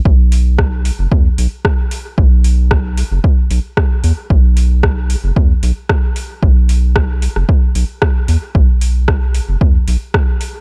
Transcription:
<<
  \new Staff \with { instrumentName = "Analog synth bass" } { \clef bass \time 4/4 \key e \mixolydian \tempo 4 = 113 b,,4. r16 fis,,16 e,16 r16 b,,16 r4 r16 | b,,4. r16 fis,,16 r8 b,,16 r8. e,16 r16 | b,,4. r16 fis,,16 e,16 r16 b,,16 r4 r16 | b,,4. r16 fis,,16 r8 b,,16 r8. e,16 r16 |
b,,4. r16 fis,,16 e,16 r16 b,,16 r4 r16 | }
  \new DrumStaff \with { instrumentName = "Drums" } \drummode { \time 4/4 bd8 hho8 <bd ss>8 hho8 bd8 hho8 <bd ss>8 hho8 | bd8 hho8 <bd ss>8 hho8 bd8 hho8 <bd ss>8 hho8 | bd8 hho8 <bd ss>8 hho8 bd8 hho8 <bd ss>8 hho8 | bd8 hho8 <bd ss>8 hho16 ss16 bd8 hho8 <bd ss>8 hho8 |
bd8 hho8 <bd ss>8 hho8 bd8 hho8 <bd ss>8 hho8 | }
>>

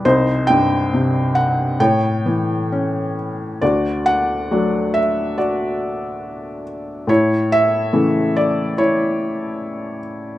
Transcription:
<<
  \new Staff \with { instrumentName = "Felt piano" } { \time 4/4 \key a \dorian \tempo 4 = 70 << { c''8 g''4 fis''8 g''4. r8 | \key d \major d''8 fis''4 e''8 d''4. r8 | cis''8 e''4 d''8 cis''4. r8 | } \\ { ees'2 cis''2 | fis'2 fis'2 | e'2 e'2 | } >> }
  \new Staff \with { instrumentName = "Felt piano" } { \clef bass \time 4/4 \key a \dorian c,8 g,8 c4 a,8 e8 cis'4 | \key d \major d,4 <fis a d'>2. | a,4 <cis e a>2. | }
>>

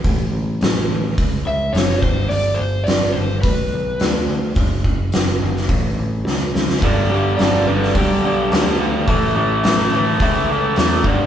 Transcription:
<<
  \new Staff \with { instrumentName = "Electric slide guitar" } { \time 4/4 \key a \mixolydian \tempo 4 = 106 r2 r8 e''8 cis''8 c''8 | d''8 c''8 d''8 c''8 b'4. r8 | r1 | r8 g'8 d''8 b'8 g'4. r8 |
r1 | }
  \new Staff \with { instrumentName = "Overdriven electric guitar" } { \clef bass \time 4/4 \key a \mixolydian r1 | r1 | r1 | <g, d g>8 <g, d g>8 <g, d g>8 <g, d g>8 <g, d g>8 <g, d g>8 <g, d g>8 <g, d g>8 |
<a, e a>8 <a, e a>8 <a, e a>8 <a, e a>8 <a, e a>8 <a, e a>8 <a, e a>8 <g, d g>8 | }
  \new Staff \with { instrumentName = "Picked electric bass" } { \clef bass \time 4/4 \key a \mixolydian a,,8 a,,8 a,,8 a,,8 cis,8 cis,8 fis,,8 g,,8 | g,,8 g,,8 g,,8 g,,8 b,,8 b,,8 d,8 d,8 | fis,,8 fis,,8 fis,,8 fis,,8 a,,8 a,,8 cis,8 cis,8 | g,,8 g,,8 g,,8 g,,8 b,,8 b,,8 d,8 d,8 |
a,,8 a,,8 a,,8 a,,8 cis,8 cis,8 e,8 g,,8 | }
  \new DrumStaff \with { instrumentName = "Drums" } \drummode { \time 4/4 <hho bd>4 <hho sn>4 <hho bd>4 <hho sn>8 bd8 | hho4 <hho sn>4 <hho bd>4 <hho sn>4 | <hho bd>8 bd8 <hho sn>8. sn16 <hho bd>4 sn8 sn16 sn16 | <hho bd>4 <hho sn>8. sn16 <hho bd>4 <hho sn>4 |
<hho bd>4 <hho sn>4 <hho bd>4 <hho sn>8 bd8 | }
>>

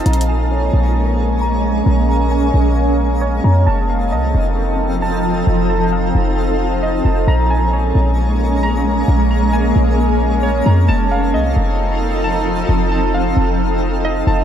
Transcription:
<<
  \new Staff \with { instrumentName = "Synth keys" } { \time 4/4 \key bes \minor \tempo 4 = 133 r8 aes''8 des''2 bes''4~ | bes''8 bes''8 aes''2 des''8 bes''8 | a''8 f''8 ees''2 a''4~ | a''8 a''8 f''2 ees''8 a''8 |
bes''8 aes''8 des''2 bes''4~ | bes''8 bes''8 aes''2 des''8 bes''8 | a''8 f''8 ees''2 a''4~ | a''8 a''8 f''2 ees''8 a''8 | }
  \new Staff \with { instrumentName = "Synth texture" } { \time 4/4 \key bes \minor <aes' des'' bes''>1~ | <aes' des'' bes''>1 | <f' ees'' a''>1~ | <f' ees'' a''>1 |
<aes' des'' bes''>1~ | <aes' des'' bes''>1 | <f' ees'' a''>1~ | <f' ees'' a''>1 | }
  \new Staff \with { instrumentName = "Ambient pad" } { \time 4/4 \key bes \minor <aes bes des'>1~ | <aes bes des'>1 | <f c' ees' a'>1~ | <f c' ees' a'>1 |
<aes bes des'>1~ | <aes bes des'>1 | <f c' ees' a'>1~ | <f c' ees' a'>1 | }
  \new Staff \with { instrumentName = "808-style bass" } { \clef bass \time 4/4 \key bes \minor bes,,4. bes,,2~ bes,,8 | bes,,4. bes,,2 f,8 | f,,4 c,8 f,,2~ f,,8 | f,,4. f,,2 f,,8 |
bes,,4. bes,,2~ bes,,8 | bes,,4. bes,,2 f,8 | f,,4 c,8 f,,2~ f,,8 | f,,4. f,,2 f,,8 | }
  \new DrumStaff \with { instrumentName = "Drums" } \drummode { \time 4/4 \tuplet 3/2 { hh16 hh16 hh16 r16 r16 r16 } r4 r4 r4 | r4 r4 r4 r4 | r4 r4 r4 r4 | r4 r4 r4 r4 |
r4 r4 r4 r4 | r4 r4 r4 r4 | r4 r4 r4 r4 | r4 r4 r4 r4 | }
>>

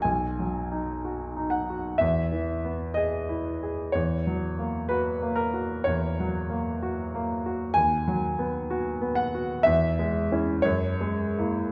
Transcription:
<<
  \new Staff \with { instrumentName = "Grand piano" } { \time 4/4 \key b \major \tempo 4 = 62 gis''4. fis''8 e''4 dis''4 | cis''4 b'8 ais'8 cis''4. r8 | gis''4. fis''8 e''4 cis''4 | }
  \new Staff \with { instrumentName = "Grand piano" } { \time 4/4 \key b \major \tuplet 3/2 { b,,8 fis8 dis'8 fis'8 dis'8 fis'8 e,8 e8 b8 gis'8 e'8 gis'8 } | \tuplet 3/2 { e,8 fis8 ais8 fis'8 ais8 fis'8 e,8 fis8 ais8 fis'8 ais8 fis'8 } | \tuplet 3/2 { dis,8 fis8 b8 fis'8 b8 fis'8 e,8 gis8 <cis' e'>8 fis,8 gis8 <ais e'>8 } | }
>>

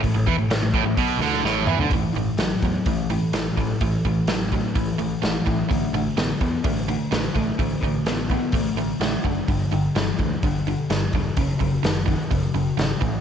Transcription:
<<
  \new Staff \with { instrumentName = "Overdriven electric guitar" } { \clef bass \time 4/4 \key a \major \tempo 4 = 127 a,16 a,16 e16 a,16 a,16 a,16 a,16 a,16 b,8 d8 a,8 e16 d16 | <a, e>8 <a, e>8 <a, fis>8 <a, fis>8 <a, e>8 <a, e>8 <a, e>8 <a, e>8 | <a, e>8 <a, e>8 <a, fis>8 <a, fis>8 <a, e>8 <a, e>8 <a, e>8 <a, e>8 | <d a>8 <d a>8 <d b>8 <d b>8 <d a>8 <d a>8 <d a>8 <d a>8 |
<d a>8 <d a>8 <d b>8 <d b>8 <d a>8 <d a>8 <d a>8 <d a>8 | <g, d>8 <g, d>8 <g, e>8 <g, e>8 <g, d>8 <g, d>8 <g, d>8 <g, d>8 | <fis, cis>8 <fis, cis>8 <fis, dis>8 <fis, dis>8 <fis, cis>8 <fis, cis>8 <fis, cis>8 <a, e>8 | }
  \new Staff \with { instrumentName = "Overdriven electric guitar" } { \clef bass \time 4/4 \key a \major a,16 a,16 e16 a,16 a,16 a,16 a,16 a,16 b,8 d8 a,8 e16 d16 | <a, e>8 <a, e>8 <a, fis>8 <a, fis>8 <a, e>8 <a, e>8 <a, e>8 <a, e>8 | <a, e>8 <a, e>8 <a, fis>8 <a, fis>8 <a, e>8 <a, e>8 <a, e>8 <a, e>8 | <d a>8 <d a>8 <d b>8 <d b>8 <d a>8 <d a>8 <d a>8 <d a>8 |
<d a>8 <d a>8 <d b>8 <d b>8 <d a>8 <d a>8 <d a>8 <d a>8 | <g, d>8 <g, d>8 <g, e>8 <g, e>8 <g, d>8 <g, d>8 <g, d>8 <g, d>8 | <fis, cis>8 <fis, cis>8 <fis, dis>8 <fis, dis>8 <fis, cis>8 <fis, cis>8 <fis, cis>8 <a, e>8 | }
  \new Staff \with { instrumentName = "Picked electric bass" } { \clef bass \time 4/4 \key a \major a,,16 a,,16 e,16 a,,16 a,,16 a,,16 a,,16 a,,16 b,,8 d,8 a,,8 e,16 d,16 | a,,8 a,,8 a,,8 e,8 a,,4 a,,8 a,,8 | a,,8 a,,8 a,,4 a,,8 a,,8 a,,8 a,,8 | a,,8 a,,8 a,,8 e,8 a,,4 a,,8 a,,8 |
a,,8 a,,8 a,,4 a,,8 a,,8 a,,8 fis,,8 | g,,8 g,,8 g,,8 d,8 g,,4 g,,8 e,,8 | fis,,8 fis,,8 fis,,4 fis,,8 fis,,8 gis,,8 a,,8 | }
  \new DrumStaff \with { instrumentName = "Drums" } \drummode { \time 4/4 <hho bd>8 bd8 <hho sn>8 bd8 <hho bd>8 sn16 sn16 sn8 toml16 tomfh16 | <hho bd>8 hho8 <hho sn>8 <hho bd>8 <hho bd>8 hho8 <hho sn>8 <hho bd>8 | <hho bd>8 <hho bd>8 <hho sn>8 <hho bd>8 <hho bd>8 hho8 <hho sn>8 <hho bd>8 | <hho bd>8 hho8 <hho sn>8 <hho bd>8 <hho bd>8 hho8 <hho sn>8 <hho bd>8 |
<hho bd>8 <hho bd>8 <hho sn>8 <hho bd>8 <hho bd>8 hho8 <hho sn>8 <hho bd>8 | <hho bd>8 hho8 <hho sn>8 <hho bd>8 <hho bd>8 hho8 <hho sn>8 <hho bd>8 | <hho bd>8 <hho bd>8 <hho sn>8 <hho bd>8 <hho bd>8 hho8 <hho sn>8 <hho bd>8 | }
>>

